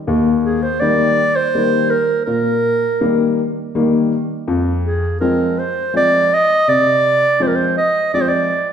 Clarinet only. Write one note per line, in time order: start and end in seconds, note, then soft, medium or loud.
0.43 0.64 G#4 medium
0.62 0.82 C5 medium
0.80 1.37 D5 loud
1.36 1.92 C5 loud
1.90 2.25 A#4 medium
2.26 3.33 A#4 medium
4.84 5.18 G#4 medium
5.20 5.60 A#4 medium
5.59 5.95 C5 medium
5.97 6.35 D5 loud
6.34 6.70 D#5 loud
6.68 7.44 D5 loud
7.43 7.49 C5 medium
7.47 7.57 A#4 medium
7.56 7.77 C5 medium
7.77 8.11 D#5 medium
8.14 8.23 D5 medium
8.21 8.30 C5 medium
8.29 8.69 D5 medium